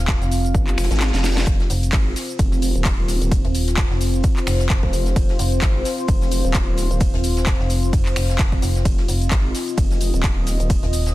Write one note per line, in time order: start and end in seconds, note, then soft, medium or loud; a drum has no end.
0.00 0.19 D#1 loud
0.00 11.14 C4 medium
0.00 11.14 F4 medium
0.00 1.45 F5 loud
0.08 kick loud
0.08 snare loud
0.08 clap loud
0.08 closed hi-hat medium
0.08 shaker medium
0.08 shaker soft
0.22 0.53 F1 loud
0.22 snare medium
0.22 closed hi-hat soft
0.22 shaker soft
0.32 open hi-hat loud
0.32 shaker medium
0.45 closed hi-hat soft
0.45 shaker soft
0.55 0.76 G1 medium
0.55 kick loud
0.55 closed hi-hat medium
0.55 reverse cymbal medium
0.55 shaker soft
0.67 clap soft
0.67 closed hi-hat soft
0.67 shaker soft
0.78 0.89 F1 loud
0.78 finger snap medium
0.78 snare medium
0.78 open hi-hat loud
0.78 shaker medium
0.84 snare medium
0.84 shaker medium
0.91 1.12 G#1 loud
0.91 snare medium
0.91 closed hi-hat soft
0.91 shaker medium
0.91 shaker soft
0.95 snare medium
0.95 shaker medium
1.00 snare medium
1.00 clap loud
1.00 closed hi-hat medium
1.00 shaker medium
1.00 shaker soft
1.08 snare medium
1.08 shaker medium
1.14 1.45 F1 medium
1.14 snare medium
1.14 closed hi-hat soft
1.14 shaker medium
1.14 shaker soft
1.18 snare medium
1.18 shaker medium
1.23 snare loud
1.23 snare medium
1.23 open hi-hat loud
1.23 shaker medium
1.37 snare medium
1.37 closed hi-hat medium
1.37 shaker soft
1.47 1.68 F1 loud
1.47 8.84 C5 loud
1.47 kick loud
1.47 closed hi-hat medium
1.47 ride medium
1.47 shaker medium
1.47 shaker soft
1.60 snare soft
1.60 closed hi-hat soft
1.70 1.91 F1 medium
1.70 open hi-hat loud
1.70 shaker medium
1.83 closed hi-hat medium
1.83 shaker soft
1.93 2.15 G#1 loud
1.93 kick loud
1.93 snare loud
1.93 clap loud
1.93 closed hi-hat medium
1.93 ride medium
1.93 shaker medium
1.93 shaker soft
2.16 snare soft
2.16 open hi-hat loud
2.16 shaker medium
2.29 closed hi-hat soft
2.29 shaker soft
2.39 2.73 F1 loud
2.39 kick loud
2.39 closed hi-hat medium
2.39 ride medium
2.39 shaker medium
2.39 shaker soft
2.52 snare soft
2.52 closed hi-hat soft
2.52 shaker soft
2.62 open hi-hat loud
2.62 shaker medium
2.75 3.19 D#1 medium
2.75 closed hi-hat soft
2.75 shaker soft
2.85 kick loud
2.85 snare loud
2.85 clap loud
2.85 closed hi-hat medium
2.85 ride medium
2.85 shaker medium
2.85 shaker soft
3.08 snare soft
3.08 open hi-hat loud
3.08 shaker medium
3.22 3.43 D#1 loud
3.22 closed hi-hat medium
3.22 shaker soft
3.31 kick loud
3.31 closed hi-hat medium
3.31 ride medium
3.31 shaker medium
3.31 shaker soft
3.45 3.89 D#1 loud
3.45 closed hi-hat soft
3.55 open hi-hat loud
3.55 shaker medium
3.68 snare soft
3.68 closed hi-hat medium
3.68 shaker soft
3.77 kick loud
3.77 snare loud
3.77 clap loud
3.77 closed hi-hat medium
3.77 ride medium
3.77 shaker medium
3.77 shaker soft
3.91 4.22 F1 loud
3.91 snare medium
4.01 open hi-hat loud
4.01 shaker medium
4.14 closed hi-hat soft
4.14 shaker soft
4.23 kick loud
4.23 closed hi-hat medium
4.23 ride medium
4.23 shaker medium
4.23 shaker soft
4.37 clap soft
4.37 closed hi-hat soft
4.37 shaker soft
4.47 4.81 F1 loud
4.47 finger snap medium
4.47 open hi-hat loud
4.47 open hi-hat medium
4.47 shaker medium
4.60 snare medium
4.60 closed hi-hat soft
4.60 shaker soft
4.70 kick loud
4.70 snare loud
4.70 clap loud
4.70 closed hi-hat medium
4.70 ride medium
4.70 shaker loud
4.70 shaker soft
4.83 4.92 F1 medium
4.83 kick medium
4.93 5.15 F1 loud
4.93 open hi-hat loud
4.93 shaker medium
5.06 snare soft
5.06 closed hi-hat medium
5.06 shaker soft
5.16 5.38 F1 loud
5.16 kick loud
5.16 closed hi-hat medium
5.16 ride medium
5.16 shaker medium
5.16 shaker soft
5.29 snare medium
5.29 closed hi-hat soft
5.39 5.61 F1 loud
5.39 open hi-hat loud
5.39 shaker medium
5.52 closed hi-hat medium
5.52 shaker soft
5.62 5.84 G#1 loud
5.62 kick loud
5.62 snare loud
5.62 clap loud
5.62 closed hi-hat medium
5.62 ride medium
5.62 shaker loud
5.62 shaker soft
5.85 snare medium
5.85 open hi-hat loud
5.85 shaker medium
5.98 closed hi-hat soft
5.98 shaker soft
6.08 6.43 F1 loud
6.08 kick loud
6.08 closed hi-hat medium
6.08 ride medium
6.08 shaker medium
6.08 shaker soft
6.22 snare soft
6.22 closed hi-hat soft
6.22 shaker soft
6.31 open hi-hat loud
6.31 shaker medium
6.45 6.89 D#1 loud
6.45 closed hi-hat soft
6.45 shaker soft
6.54 kick loud
6.54 snare loud
6.54 clap loud
6.54 closed hi-hat medium
6.54 ride medium
6.54 shaker medium
6.54 shaker soft
6.77 snare soft
6.77 open hi-hat loud
6.77 shaker medium
6.91 7.12 D#1 loud
6.91 closed hi-hat medium
6.91 shaker soft
7.01 kick loud
7.01 closed hi-hat medium
7.01 ride medium
7.01 shaker medium
7.01 shaker soft
7.14 7.58 D#1 loud
7.14 closed hi-hat soft
7.23 open hi-hat loud
7.23 shaker medium
7.37 snare soft
7.37 closed hi-hat medium
7.37 shaker soft
7.46 kick loud
7.46 snare loud
7.46 clap loud
7.46 closed hi-hat medium
7.46 ride medium
7.46 shaker medium
7.46 shaker soft
7.60 7.91 F1 loud
7.60 snare medium
7.70 open hi-hat loud
7.70 shaker medium
7.83 closed hi-hat soft
7.83 shaker soft
7.93 8.15 F1 loud
7.93 kick loud
7.93 closed hi-hat medium
7.93 ride medium
7.93 shaker medium
7.93 shaker soft
8.06 clap soft
8.06 closed hi-hat soft
8.06 shaker soft
8.16 8.61 F1 medium
8.16 finger snap medium
8.16 open hi-hat loud
8.16 open hi-hat medium
8.16 shaker medium
8.29 snare medium
8.29 closed hi-hat soft
8.29 shaker soft
8.39 kick loud
8.39 snare loud
8.39 clap loud
8.39 closed hi-hat medium
8.39 ride medium
8.39 shaker medium
8.39 shaker soft
8.52 kick medium
8.52 closed hi-hat soft
8.62 8.84 F1 loud
8.62 open hi-hat loud
8.62 shaker medium
8.75 snare soft
8.75 closed hi-hat soft
8.75 shaker soft
8.85 9.07 F1 loud
8.85 11.14 D#5 loud
8.85 kick loud
8.85 closed hi-hat medium
8.85 ride medium
8.85 shaker loud
8.85 shaker soft
8.98 snare medium
8.98 closed hi-hat soft
9.08 9.30 F1 loud
9.08 open hi-hat loud
9.08 shaker medium
9.22 closed hi-hat medium
9.22 shaker soft
9.31 9.53 G#1 loud
9.31 kick loud
9.31 snare loud
9.31 clap loud
9.31 closed hi-hat medium
9.31 ride medium
9.31 shaker loud
9.31 shaker soft
9.55 snare medium
9.55 open hi-hat loud
9.55 shaker medium
9.68 closed hi-hat soft
9.68 shaker soft
9.78 10.12 F1 medium
9.78 kick loud
9.78 closed hi-hat medium
9.78 ride medium
9.78 shaker medium
9.78 shaker soft
9.91 snare soft
9.91 closed hi-hat soft
9.91 shaker soft
10.01 open hi-hat loud
10.01 shaker medium
10.14 10.58 D#1 loud
10.14 closed hi-hat soft
10.14 shaker soft
10.23 kick loud
10.23 snare loud
10.23 clap loud
10.23 closed hi-hat medium
10.23 ride medium
10.23 shaker medium
10.23 shaker soft
10.46 snare soft
10.46 open hi-hat loud
10.46 shaker medium
10.60 10.81 D#1 loud
10.60 closed hi-hat medium
10.60 shaker soft
10.70 kick loud
10.70 closed hi-hat medium
10.70 ride medium
10.70 shaker medium
10.70 shaker soft
10.83 11.14 D#1 loud
10.83 closed hi-hat soft
10.93 open hi-hat loud
10.93 shaker medium
11.06 snare soft
11.06 closed hi-hat medium
11.06 shaker soft